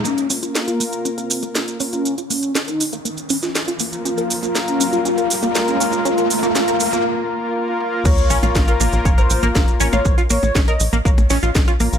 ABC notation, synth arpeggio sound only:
X:1
M:4/4
L:1/16
Q:1/4=120
K:Bbm
V:1 name="Synth arpeggio sound"
B, z D F z F B, z D B z B, B, z D F | z F B, z D B z B, B, z D F z F B, z | D B z B, B, z D F D B z B, B, z D F | D B z B, D B z B, z8 |
[B,B] z [Dd] [Ff] z [Ff] [B,B] z [Dd] [Bb] z [B,B] [B,B] z [Dd] [Ff] | z [Ff] [B,B] z [Dd] [Bb] z [B,B] [B,B] z [Dd] [Ff] z [Ff] [B,B] z |]